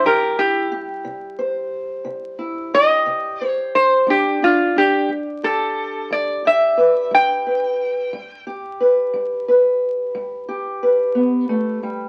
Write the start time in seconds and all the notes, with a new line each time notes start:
Already playing: G3
0.04 C3 G4 A#4
0.38 E4 G4
0.72 G4
1.05 C3
1.39 C5
2.04 C3
2.39 E4
2.74 G4 D#5
3.06 C3
3.41 C5
3.46 C#5
3.75 C5
4.07 G3 D4 G4
4.42 D4 F4
4.76 D4 G4
5.09 G3
5.43 G4 A4
6.11 G3 D5
6.45 G4 E5
6.77 B4
7.11 G3 G5
7.47 B4
8.13 G3
8.47 G4
8.80 B4
9.14 G3
9.48 B4
10.15 G3
10.48 G4
10.83 B4
11.15 B3
11.49 A3
11.83 G3